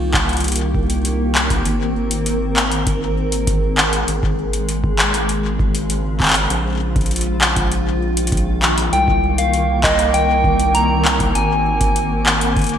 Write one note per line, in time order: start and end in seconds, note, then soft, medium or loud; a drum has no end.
0.00 1.62 C2 medium
0.00 4.08 D#3 medium
0.00 5.05 A#3 medium
0.00 0.20 F4 medium
0.00 1.65 G4 medium
0.14 kick loud
0.14 clap loud
0.21 2.62 C4 medium
0.29 5.05 A#4 loud
0.29 closed hi-hat soft
0.33 closed hi-hat soft
0.37 closed hi-hat soft
0.41 closed hi-hat soft
0.44 closed hi-hat medium
0.48 closed hi-hat soft
0.52 closed hi-hat medium
0.56 closed hi-hat medium
0.75 kick loud
0.90 closed hi-hat medium
1.05 closed hi-hat medium
1.35 clap loud
1.50 kick loud
1.50 closed hi-hat medium
1.65 4.05 G#1 medium
1.65 closed hi-hat medium
2.11 8.93 G#3 medium
2.11 closed hi-hat medium
2.26 closed hi-hat medium
2.56 clap loud
2.69 4.86 G#4 medium
2.69 closed hi-hat medium
2.87 kick loud
2.87 closed hi-hat medium
3.32 closed hi-hat medium
3.47 kick loud
3.47 closed hi-hat medium
3.78 clap loud
3.93 closed hi-hat medium
4.08 6.47 G#1 medium
4.08 6.50 C#3 medium
4.08 closed hi-hat medium
4.23 kick loud
4.53 closed hi-hat medium
4.69 closed hi-hat medium
4.84 kick loud
4.99 clap loud
5.14 7.47 C4 loud
5.14 9.90 F4 medium
5.14 7.47 C5 medium
5.14 closed hi-hat medium
5.29 closed hi-hat medium
5.59 kick loud
5.75 closed hi-hat medium
5.90 closed hi-hat medium
6.20 kick loud
6.20 clap medium
6.23 clap medium
6.25 clap medium
6.28 clap medium
6.30 clap medium
6.33 clap loud
6.33 closed hi-hat medium
6.50 8.90 A#1 medium
6.50 12.78 D#3 medium
6.50 closed hi-hat medium
6.96 kick loud
6.96 closed hi-hat soft
7.01 closed hi-hat soft
7.06 closed hi-hat soft
7.11 closed hi-hat soft
7.16 closed hi-hat soft
7.21 closed hi-hat medium
7.33 12.78 A#3 medium
7.41 clap loud
7.56 12.78 A#4 medium
7.56 kick loud
7.56 closed hi-hat medium
7.72 closed hi-hat medium
8.17 closed hi-hat medium
8.27 closed hi-hat soft
8.32 kick loud
8.32 closed hi-hat soft
8.37 closed hi-hat soft
8.62 clap loud
8.78 closed hi-hat medium
8.93 11.32 C2 medium
8.93 9.40 G5 loud
8.93 closed hi-hat medium
9.08 kick loud
9.38 12.32 C4 medium
9.38 9.85 F5 medium
9.38 closed hi-hat medium
9.54 closed hi-hat soft
9.84 10.16 D#5 medium
9.84 kick loud
9.84 clap loud
9.99 11.35 G4 medium
9.99 closed hi-hat medium
10.14 10.76 G5 loud
10.14 closed hi-hat soft
10.44 kick loud
10.60 closed hi-hat medium
10.75 11.35 A#5 loud
10.75 closed hi-hat soft
11.05 clap loud
11.20 kick loud
11.20 closed hi-hat medium
11.35 12.78 G#1 medium
11.35 12.78 G#5 loud
11.35 closed hi-hat medium
11.50 12.78 G#3 medium
11.81 kick loud
11.81 closed hi-hat medium
11.96 closed hi-hat soft
12.26 clap loud
12.41 12.78 G#4 medium
12.41 closed hi-hat medium
12.56 kick loud
12.56 closed hi-hat soft
12.59 closed hi-hat soft
12.62 closed hi-hat soft
12.64 closed hi-hat soft
12.67 closed hi-hat soft
12.69 closed hi-hat soft